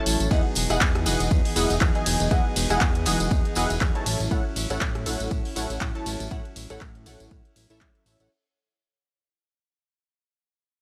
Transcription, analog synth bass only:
0.06 0.17 A1 medium
0.20 0.29 A1 medium
0.31 0.42 E2 loud
0.56 0.67 E1 medium
0.70 0.79 E1 medium
0.81 1.08 E2 medium
1.06 1.17 E1 medium
1.20 1.29 E1 medium
1.31 1.42 E2 loud
1.56 1.67 E1 medium
1.70 1.79 E1 medium
1.81 1.92 E2 medium
2.06 2.17 E1 medium
2.20 2.29 E1 medium
2.31 2.42 E2 loud
2.56 2.67 E1 medium
2.70 2.79 E1 medium
2.81 3.07 E2 medium
3.06 3.17 E1 medium
3.20 3.29 E1 medium
3.31 3.42 E2 loud
3.56 3.67 E1 medium
3.70 3.79 E1 medium
3.81 3.92 E2 loud
4.06 4.17 A1 medium
4.20 4.29 A1 medium
4.31 4.42 A2 loud
4.56 4.67 A1 medium
4.70 4.79 A1 medium
4.81 5.07 A2 medium
5.06 5.17 A1 medium
5.20 5.29 A1 medium
5.31 5.42 A2 loud
5.56 5.67 A1 medium
5.70 5.79 A1 medium
5.81 5.92 A2 loud
6.06 6.17 A1 medium
6.20 6.29 A1 medium
6.31 6.42 A2 loud
6.56 6.67 A1 medium
6.70 6.79 A1 medium
6.81 7.08 A2 medium
7.06 7.17 A1 medium
7.20 7.29 A1 medium
7.31 7.42 A2 medium
7.56 7.67 A1 medium
7.70 7.83 A1 medium
7.81 7.92 A2 medium
8.06 8.17 A1 loud
8.20 8.29 A1 medium

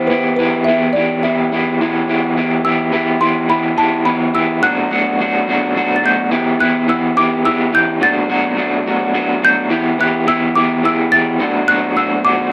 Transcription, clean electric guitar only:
0.00 0.10 E4 loud
0.00 0.11 G4 loud
0.10 0.38 E3 medium
0.10 0.38 B3 medium
0.10 0.39 E4 medium
0.10 0.39 G4 medium
0.39 0.67 E3 medium
0.39 0.68 B3 medium
0.39 0.68 E4 loud
0.39 0.68 G4 loud
0.67 0.94 E3 medium
0.67 0.95 B3 loud
0.67 0.96 E4 loud
0.67 0.96 G4 medium
0.95 1.23 E3 medium
0.95 1.24 B3 medium
0.95 1.24 E4 medium
0.95 1.24 G4 loud
1.23 1.51 E3 loud
1.23 1.51 B3 medium
1.23 1.52 E4 medium
1.23 1.52 G4 loud
1.52 1.79 E3 medium
1.52 1.80 B3 loud
1.52 1.80 E4 loud
1.52 1.81 G4 medium
1.81 2.07 E3 medium
1.81 2.08 B3 medium
1.81 2.08 E4 loud
1.81 2.09 G4 medium
2.08 2.35 E3 medium
2.08 2.36 B3 loud
2.08 2.36 E4 medium
2.08 2.37 G4 loud
2.36 2.64 E3 medium
2.36 2.64 B3 medium
2.36 2.64 E4 medium
2.36 2.65 G4 medium
2.65 2.91 E3 medium
2.65 2.91 B3 medium
2.65 2.92 E4 medium
2.65 2.92 G4 medium
2.92 3.19 E3 medium
2.92 3.21 B3 loud
2.92 3.20 E4 loud
2.92 3.21 G4 loud
3.21 3.47 E3 medium
3.21 3.49 B3 medium
3.21 3.48 E4 medium
3.21 3.49 G4 loud
3.48 3.75 E3 medium
3.48 3.77 B3 medium
3.48 3.77 E4 medium
3.48 3.77 G4 medium
3.77 4.04 E3 medium
3.77 4.06 B3 medium
3.77 4.05 E4 loud
3.77 4.05 G4 loud
4.05 4.33 E3 medium
4.05 4.34 B3 medium
4.05 4.34 E4 medium
4.05 4.34 G4 loud
4.34 4.61 E3 medium
4.34 4.62 B3 medium
4.34 4.61 E4 loud
4.34 4.61 G4 medium
4.62 4.89 B2 loud
4.62 4.90 F#3 medium
4.62 4.90 A3 loud
4.62 4.91 D4 medium
4.62 4.91 F#4 loud
4.90 5.18 B2 medium
4.90 5.19 F#3 loud
4.90 5.19 A3 loud
4.90 5.20 D4 medium
4.90 5.20 F#4 loud
5.19 5.46 B2 medium
5.19 5.47 F#3 medium
5.19 5.47 A3 medium
5.19 5.48 D4 loud
5.19 5.49 F#4 loud
5.48 5.74 B2 medium
5.48 5.75 F#3 loud
5.48 5.75 A3 loud
5.48 5.76 D4 loud
5.48 5.76 F#4 loud
5.75 6.02 B2 medium
5.75 6.02 F#3 medium
5.75 6.03 A3 medium
5.75 6.04 D4 loud
5.75 6.04 F#4 loud
6.03 6.30 B2 medium
6.03 6.30 F#3 medium
6.03 6.30 A3 medium
6.03 6.31 D4 medium
6.03 6.31 F#4 medium
6.31 6.58 E3 loud
6.31 6.60 B3 loud
6.31 6.59 E4 loud
6.31 6.60 G4 loud
6.59 6.86 E3 loud
6.59 6.88 B3 medium
6.59 6.87 E4 loud
6.59 6.88 G4 loud
6.87 7.15 E3 medium
6.87 7.17 B3 loud
6.87 7.16 E4 medium
6.87 7.17 G4 medium
7.16 7.43 E3 medium
7.16 7.45 B3 medium
7.16 7.44 E4 loud
7.16 7.45 G4 loud
7.45 7.71 E3 medium
7.45 7.72 B3 loud
7.45 7.72 E4 loud
7.45 7.72 G4 medium
7.72 7.99 E3 medium
7.72 8.01 B3 medium
7.72 7.99 E4 medium
7.72 8.00 G4 medium
8.00 8.27 B2 loud
8.00 8.28 F#3 medium
8.00 8.28 A3 loud
8.00 8.29 D4 loud
8.00 8.29 F#4 loud
8.28 8.55 B2 loud
8.28 8.56 F#3 loud
8.28 8.56 A3 loud
8.28 8.57 D4 loud
8.28 8.57 F#4 loud
8.57 8.85 B2 medium
8.57 8.85 F#3 medium
8.57 8.86 A3 medium
8.57 8.86 D4 medium
8.57 8.86 F#4 medium
8.86 9.12 B2 medium
8.86 9.12 F#3 medium
8.86 9.13 A3 loud
8.86 9.13 D4 loud
8.86 9.14 F#4 loud
9.13 9.41 B2 medium
9.13 9.41 F#3 loud
9.13 9.42 A3 medium
9.13 9.42 D4 medium
9.13 9.42 F#4 medium
9.42 9.69 B2 medium
9.42 9.69 F#3 medium
9.42 9.69 A3 medium
9.42 9.69 D4 medium
9.42 9.69 F#4 medium
9.69 9.97 E3 medium
9.69 9.99 B3 loud
9.69 9.98 E4 loud
9.69 9.99 G4 loud
9.98 10.25 E3 medium
9.98 10.26 B3 medium
9.98 10.26 E4 loud
9.98 10.26 G4 loud
10.26 10.54 E3 medium
10.26 10.56 B3 medium
10.26 10.55 E4 loud
10.26 10.55 G4 medium
10.55 10.82 E3 medium
10.55 10.83 B3 loud
10.55 10.83 E4 loud
10.55 10.84 G4 loud
10.83 11.11 E3 medium
10.83 11.12 B3 loud
10.83 11.12 E4 loud
10.83 11.12 G4 loud
11.12 11.38 E3 medium
11.12 11.40 B3 medium
11.12 11.39 E4 medium
11.12 11.39 G4 loud
11.39 11.66 B2 loud
11.39 11.66 F#3 loud
11.39 11.67 A3 loud
11.39 11.67 D4 loud
11.39 11.68 F#4 loud
11.67 11.94 B2 medium
11.67 11.95 F#3 loud
11.67 11.95 A3 loud
11.67 11.96 D4 medium
11.67 11.96 F#4 loud
11.96 12.23 B2 medium
11.96 12.23 F#3 medium
11.96 12.24 A3 medium
11.96 12.24 D4 loud
11.96 12.24 F#4 loud
12.24 12.50 B2 loud
12.24 12.51 F#3 loud
12.24 12.51 A3 loud
12.24 12.52 D4 loud
12.24 12.52 F#4 loud

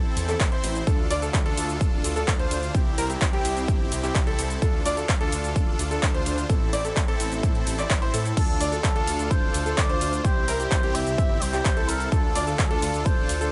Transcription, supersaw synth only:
0.00 0.26 C4 loud
0.00 0.26 E4 medium
0.00 0.26 A4 loud
0.29 0.49 C4 medium
0.29 0.49 E4 medium
0.29 0.49 A4 medium
0.52 0.84 C4 medium
0.52 0.84 E4 medium
0.52 0.84 C5 loud
0.87 1.08 D4 medium
0.87 1.08 A4 medium
1.10 1.19 D4 loud
1.10 1.19 F4 medium
1.10 1.19 D5 loud
1.22 1.38 D4 medium
1.22 1.38 F4 medium
1.22 1.38 A4 medium
1.46 2.14 D4 loud
1.46 2.14 F4 medium
1.46 2.14 A4 loud
2.16 2.37 D4 medium
2.16 2.37 F4 medium
2.16 2.37 A4 medium
2.39 2.72 D4 medium
2.39 2.72 F4 medium
2.39 2.72 C5 loud
2.75 2.95 C4 medium
2.75 2.95 E4 medium
2.75 2.95 G4 medium
2.98 3.07 C4 loud
2.98 3.07 E4 medium
2.98 3.07 A#4 loud
3.10 3.25 C4 medium
3.10 3.25 E4 medium
3.10 3.25 G4 medium
3.33 4.01 C4 loud
3.33 4.01 E4 medium
3.33 4.01 G4 loud
4.03 4.24 C4 medium
4.03 4.24 E4 medium
4.03 4.24 G4 medium
4.27 4.59 C4 medium
4.27 4.59 E4 medium
4.27 4.59 A4 loud
4.62 4.83 D4 medium
4.62 4.83 F4 medium
4.62 4.83 A4 medium
4.85 4.94 D4 loud
4.85 4.94 F4 medium
4.85 4.94 D5 loud
4.97 5.13 D4 medium
4.97 5.13 F4 medium
4.97 5.13 A4 medium
5.21 5.89 D4 loud
5.21 5.89 F4 medium
5.21 5.89 A4 loud
5.91 6.12 D4 medium
5.91 6.12 F4 medium
5.91 6.12 A4 medium
6.14 6.47 D4 medium
6.14 6.47 F4 medium
6.14 6.47 C5 loud
6.50 6.70 C4 medium
6.50 6.70 E4 medium
6.50 6.70 A4 medium
6.73 6.82 C4 loud
6.73 6.82 E4 medium
6.73 6.82 D5 loud
6.85 7.00 C4 medium
6.85 7.00 E4 medium
6.85 7.00 A4 medium
7.08 7.76 C4 loud
7.08 7.76 E4 medium
7.08 7.76 A4 loud
7.78 7.99 C4 medium
7.78 7.99 E4 medium
7.78 7.99 D5 medium
8.02 8.11 C4 loud
8.02 8.11 E4 medium
8.02 8.11 C5 loud
8.14 8.34 C4 medium
8.14 8.34 E4 medium
8.14 8.34 A4 medium
8.37 8.58 D4 medium
8.37 8.58 F4 medium
8.37 8.58 A4 medium
8.60 8.69 D4 loud
8.60 8.69 F4 medium
8.60 8.69 D5 loud
8.72 8.88 D4 medium
8.72 8.88 F4 medium
8.72 8.88 A4 medium
8.96 9.64 D4 loud
8.96 9.64 F4 medium
8.96 9.64 A4 loud
9.66 9.87 D4 medium
9.66 9.87 F4 medium
9.66 9.87 A4 medium
9.89 10.22 D4 medium
9.89 10.22 F4 medium
9.89 10.22 C5 loud
10.25 10.45 C4 medium
10.25 10.45 E4 medium
10.25 10.45 G4 medium
10.48 10.57 C4 loud
10.48 10.57 E4 medium
10.48 10.57 A#4 loud
10.60 10.75 C4 medium
10.60 10.75 E4 medium
10.60 10.75 G4 medium
10.83 11.51 C4 loud
10.83 11.51 E4 medium
10.83 11.51 G4 loud
11.53 11.74 C4 medium
11.53 11.74 E4 medium
11.53 11.74 G4 medium
11.77 12.09 C4 medium
11.77 12.09 E4 medium
11.77 12.09 A4 loud
12.12 12.33 D4 medium
12.12 12.33 F4 medium
12.12 12.33 A4 medium
12.35 12.44 D4 loud
12.35 12.44 F4 medium
12.35 12.44 D5 loud
12.47 12.63 D4 medium
12.47 12.63 F4 medium
12.47 12.63 A4 medium
12.71 13.39 D4 loud
12.71 13.39 F4 medium
12.71 13.39 A4 loud
13.41 13.52 D4 medium
13.41 13.52 F4 medium
13.41 13.52 A4 medium

